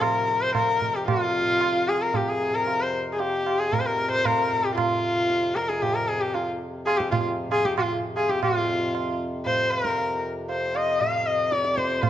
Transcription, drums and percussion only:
0.01 tabla na, tabla ge
0.28 tabla te
0.55 tabla na, tabla ge
0.81 tabla ge
1.08 tabla na, tabla ge
1.61 tabla na
2.14 tabla tin, tabla ge
2.67 tabla tin
3.20 tabla tin
3.46 tabla na
3.73 tabla tin, tabla ge
4.25 tabla na, tabla ge
4.52 tabla ge
4.78 tabla na, tabla ge
5.30 tabla te
5.43 tabla te
5.56 tabla ke
5.70 tabla te
5.82 tabla tin, tabla ge
6.35 tabla tin
6.87 tabla na
7.00 tabla ke
7.12 tabla na, tabla ge
7.52 tabla na
7.65 tabla ke
7.78 tabla na, tabla ge
8.17 tabla na
8.29 tabla ke
8.43 tabla na, tabla ge
8.95 tabla na
9.46 tabla tin, tabla ge
9.72 tabla na
9.85 tabla ke
9.98 tabla tin
10.49 tabla tin
10.75 tabla na
11.01 tabla tin, tabla ge
11.52 tabla te
11.65 tabla te
11.78 tabla ke
11.90 tabla te
12.03 tabla na, tabla ge

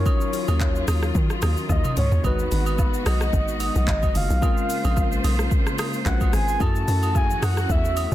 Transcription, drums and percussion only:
0.06 kick, high agogo, shaker
0.21 shaker
0.33 open hi-hat, shaker
0.48 high agogo, shaker
0.60 kick, clap, low woodblock, shaker
0.75 shaker
0.88 cross-stick, open hi-hat, high agogo, shaker
1.03 cross-stick, shaker
1.15 kick, shaker
1.30 cross-stick, shaker
1.42 cross-stick, open hi-hat, high agogo, shaker
1.57 shaker
1.69 kick, high tom, low woodblock, shaker
1.84 mid tom, high agogo, shaker
1.97 mid tom, open hi-hat, shaker
2.12 floor tom, shaker
2.24 kick, high agogo, shaker
2.39 shaker
2.52 open hi-hat, shaker
2.66 high agogo, shaker
2.79 kick, low woodblock, shaker
2.94 shaker
3.06 cross-stick, open hi-hat, high agogo, shaker
3.21 cross-stick, shaker
3.33 kick, shaker
3.48 shaker
3.60 open hi-hat, high agogo, shaker
3.75 shaker
3.88 kick, clap, low woodblock, shaker
4.03 kick, high agogo, shaker
4.15 open hi-hat, shaker
4.30 shaker
4.42 kick, high agogo, shaker
4.57 shaker
4.70 open hi-hat, shaker
4.84 high agogo, shaker
4.97 kick, low woodblock, shaker
5.12 shaker
5.24 open hi-hat, high agogo, shaker
5.39 cross-stick, shaker
5.51 kick, shaker
5.67 cross-stick, shaker
5.78 cross-stick, open hi-hat, high agogo, shaker
5.93 shaker
6.06 kick, clap, low woodblock, shaker
6.21 kick, high agogo, shaker
6.33 cross-stick, open hi-hat, shaker
6.48 shaker
6.60 kick, high agogo, shaker
6.76 shaker
6.88 open hi-hat, shaker
7.03 high agogo, shaker
7.15 kick, low woodblock, shaker
7.30 shaker
7.42 cross-stick, open hi-hat, high agogo, shaker
7.57 cross-stick, shaker
7.70 kick, shaker
7.85 shaker
7.97 open hi-hat, high agogo, shaker
8.12 shaker

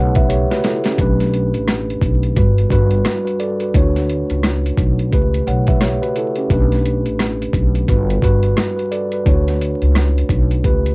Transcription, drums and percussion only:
0.15 kick, closed hi-hat
0.30 closed hi-hat
0.51 snare, closed hi-hat
0.64 snare, closed hi-hat
0.84 snare, closed hi-hat
0.98 kick, closed hi-hat
1.20 snare, closed hi-hat
1.34 closed hi-hat
1.54 closed hi-hat
1.68 cross-stick, snare, closed hi-hat
1.90 closed hi-hat
2.01 kick, closed hi-hat
2.23 closed hi-hat
2.37 kick, closed hi-hat
2.58 closed hi-hat
2.70 kick, closed hi-hat
2.91 closed hi-hat
3.05 cross-stick, snare, closed hi-hat
3.27 closed hi-hat
3.40 closed hi-hat
3.60 closed hi-hat
3.74 kick, closed hi-hat
3.96 snare, closed hi-hat
4.09 closed hi-hat
4.30 closed hi-hat
4.43 cross-stick, snare, closed hi-hat
4.66 closed hi-hat
4.77 kick, closed hi-hat
4.99 closed hi-hat
5.12 kick, closed hi-hat
5.34 closed hi-hat
5.48 closed hi-hat
5.67 kick, closed hi-hat
5.81 cross-stick, snare, closed hi-hat
6.03 closed hi-hat
6.16 closed hi-hat
6.36 closed hi-hat
6.50 kick, closed hi-hat
6.72 snare, closed hi-hat
6.85 closed hi-hat
7.06 closed hi-hat
7.19 cross-stick, snare, closed hi-hat
7.42 closed hi-hat
7.53 kick, closed hi-hat
7.75 closed hi-hat
7.88 kick, closed hi-hat
8.10 closed hi-hat
8.22 kick, closed hi-hat
8.43 closed hi-hat
8.57 cross-stick, snare, closed hi-hat
8.79 closed hi-hat
8.92 closed hi-hat
9.12 closed hi-hat
9.26 kick, closed hi-hat
9.48 snare, closed hi-hat
9.61 closed hi-hat
9.82 closed hi-hat
9.95 cross-stick, snare, closed hi-hat
10.18 closed hi-hat
10.29 kick, closed hi-hat
10.51 closed hi-hat
10.64 kick, closed hi-hat
10.86 closed hi-hat

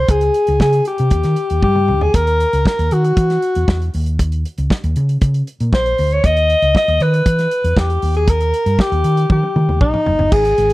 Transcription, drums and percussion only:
0.08 kick, closed hi-hat
0.21 closed hi-hat
0.34 closed hi-hat
0.47 closed hi-hat
0.60 kick, snare
0.73 closed hi-hat
0.85 closed hi-hat
0.98 closed hi-hat
1.11 kick, closed hi-hat
1.23 snare, closed hi-hat
1.36 closed hi-hat
1.50 closed hi-hat
1.62 kick, high tom
1.76 mid tom
1.88 mid tom
2.01 floor tom
2.14 kick, closed hi-hat
2.27 closed hi-hat
2.40 closed hi-hat
2.53 closed hi-hat
2.65 kick, snare
2.79 closed hi-hat
2.91 closed hi-hat
3.04 closed hi-hat
3.17 kick, closed hi-hat
3.30 snare, closed hi-hat
3.42 closed hi-hat
3.55 closed hi-hat
3.68 kick, snare
3.82 closed hi-hat
3.94 open hi-hat
4.06 closed hi-hat
4.19 kick, closed hi-hat
4.32 closed hi-hat
4.45 closed hi-hat
4.58 closed hi-hat
4.70 kick, snare
4.84 closed hi-hat
4.96 closed hi-hat
5.09 closed hi-hat
5.21 kick, closed hi-hat
5.34 closed hi-hat
5.47 closed hi-hat
5.60 closed hi-hat
5.73 kick, snare
5.86 closed hi-hat
5.98 open hi-hat
6.11 closed hi-hat
6.24 kick, closed hi-hat
6.37 closed hi-hat
6.50 closed hi-hat
6.62 closed hi-hat
6.75 kick, snare
6.88 closed hi-hat
7.00 closed hi-hat
7.14 closed hi-hat
7.26 kick, closed hi-hat
7.39 snare, closed hi-hat
7.51 closed hi-hat
7.65 closed hi-hat
7.77 kick, snare
7.90 closed hi-hat
8.02 open hi-hat
8.14 closed hi-hat
8.28 kick, closed hi-hat
8.41 closed hi-hat
8.54 closed hi-hat
8.66 closed hi-hat
8.79 kick, snare
8.92 closed hi-hat
9.04 closed hi-hat
9.17 closed hi-hat
9.30 kick, high tom
9.43 high tom
9.56 mid tom
9.69 mid tom
9.81 kick, mid tom
9.94 mid tom
10.06 floor tom
10.19 floor tom
10.32 kick, crash
10.45 closed hi-hat
10.58 closed hi-hat
10.70 closed hi-hat

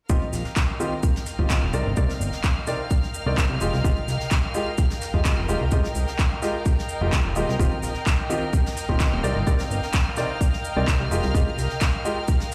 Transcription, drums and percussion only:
0.09 kick, shaker
0.22 closed hi-hat
0.33 snare, shaker
0.45 snare
0.56 kick, snare, clap, shaker
0.80 shaker
1.03 kick, shaker
1.16 snare
1.26 snare, shaker
1.39 kick
1.49 kick, snare, clap, shaker
1.73 shaker
1.97 kick, shaker
2.09 snare
2.21 shaker
2.32 snare
2.44 kick, snare, clap, shaker
2.67 snare, shaker
2.90 kick, shaker
3.03 snare
3.14 shaker
3.38 kick, snare, clap, shaker
3.61 shaker
3.73 snare
3.84 kick, shaker
3.96 closed hi-hat
4.08 snare, shaker
4.20 snare
4.31 kick, snare, clap, shaker
4.54 shaker
4.78 kick, shaker
4.90 snare
5.01 snare, shaker
5.14 kick
5.25 kick, snare, clap, shaker
5.49 shaker
5.71 kick, shaker
5.84 snare
5.95 shaker
6.08 snare
6.19 kick, snare, clap, shaker
6.42 snare, shaker
6.65 kick, shaker
6.79 snare
6.89 shaker
7.12 kick, snare, clap, shaker
7.36 shaker
7.49 snare
7.60 kick, shaker
7.71 closed hi-hat
7.83 snare, shaker
7.94 snare
8.06 kick, snare, clap, shaker
8.30 shaker
8.53 kick, shaker
8.66 snare
8.76 snare, shaker
8.89 kick
9.00 kick, snare, clap, shaker
9.24 shaker
9.47 kick, shaker
9.59 snare
9.71 shaker
9.83 snare
9.93 kick, snare, clap, shaker
10.16 snare, shaker
10.41 kick, shaker
10.53 snare
10.64 shaker
10.88 kick, snare, clap, shaker
11.12 shaker
11.23 snare
11.35 kick, shaker
11.47 closed hi-hat
11.58 snare, shaker
11.70 snare
11.81 kick, snare, clap, shaker
12.05 shaker
12.28 kick, shaker
12.40 snare
12.52 snare

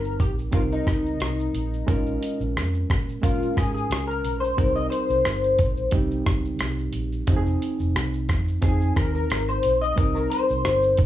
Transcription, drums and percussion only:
0.05 shaker
0.20 kick, closed hi-hat, shaker
0.39 shaker
0.52 kick, closed hi-hat, shaker
0.72 shaker
0.87 kick, cross-stick, closed hi-hat, shaker
1.06 shaker
1.20 cross-stick, closed hi-hat, shaker
1.40 shaker
1.55 closed hi-hat, shaker
1.74 shaker
1.88 kick, closed hi-hat, shaker
2.07 shaker
2.23 closed hi-hat, shaker
2.41 shaker
2.57 cross-stick, closed hi-hat, shaker
2.74 shaker
2.90 kick, cross-stick, closed hi-hat, shaker
3.09 shaker
3.23 kick, closed hi-hat, shaker
3.43 shaker
3.57 kick, cross-stick, closed hi-hat, shaker
3.77 shaker
3.91 cross-stick, closed hi-hat, shaker
4.10 shaker
4.25 closed hi-hat, shaker
4.44 shaker
4.58 kick, closed hi-hat, shaker
4.76 shaker
4.92 closed hi-hat, shaker
5.10 shaker
5.25 cross-stick, closed hi-hat, shaker
5.44 shaker
5.59 kick, closed hi-hat, shaker
5.77 shaker
5.91 kick, closed hi-hat, shaker
6.11 shaker
6.26 kick, cross-stick, closed hi-hat, shaker
6.45 shaker
6.59 cross-stick, closed hi-hat, shaker
6.79 shaker
6.93 closed hi-hat, shaker
7.12 shaker
7.27 kick, closed hi-hat, shaker
7.46 shaker
7.62 closed hi-hat, shaker
7.80 shaker
7.81 shaker
7.96 cross-stick, closed hi-hat, shaker
8.14 shaker
8.29 kick, cross-stick, closed hi-hat, shaker
8.48 shaker
8.61 kick, closed hi-hat, shaker
8.80 shaker
8.96 kick, cross-stick, closed hi-hat, shaker
9.15 shaker
9.29 cross-stick, closed hi-hat, shaker
9.49 shaker
9.63 closed hi-hat, shaker
9.82 shaker
9.83 shaker
9.98 kick, closed hi-hat, shaker
10.16 shaker
10.17 shaker
10.31 closed hi-hat, shaker
10.50 shaker
10.65 cross-stick, closed hi-hat, shaker
10.82 shaker
10.97 kick, closed hi-hat, shaker
11.01 shaker

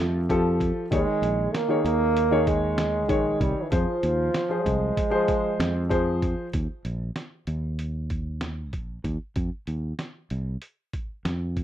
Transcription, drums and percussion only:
0.29 kick, closed hi-hat
0.60 kick, closed hi-hat
0.92 kick, closed hi-hat
1.23 closed hi-hat
1.55 snare, closed hi-hat
1.86 closed hi-hat
2.17 closed hi-hat
2.47 kick, closed hi-hat
2.78 snare, closed hi-hat
3.09 kick, closed hi-hat
3.41 kick, closed hi-hat
3.72 kick, closed hi-hat
4.03 closed hi-hat
4.34 snare, closed hi-hat
4.66 kick, closed hi-hat
4.97 kick, closed hi-hat
5.28 kick, closed hi-hat
5.60 snare, closed hi-hat
5.91 kick, closed hi-hat
6.22 kick, closed hi-hat
6.53 kick, closed hi-hat
6.85 closed hi-hat
7.16 snare, closed hi-hat
7.47 closed hi-hat
7.79 closed hi-hat
8.10 kick, closed hi-hat
8.41 snare, closed hi-hat
8.73 kick, closed hi-hat
9.04 kick, closed hi-hat
9.36 kick, closed hi-hat
9.67 closed hi-hat
9.99 snare, closed hi-hat
10.30 closed hi-hat
10.62 closed hi-hat
10.93 kick, closed hi-hat
11.25 snare, closed hi-hat
11.57 kick, closed hi-hat

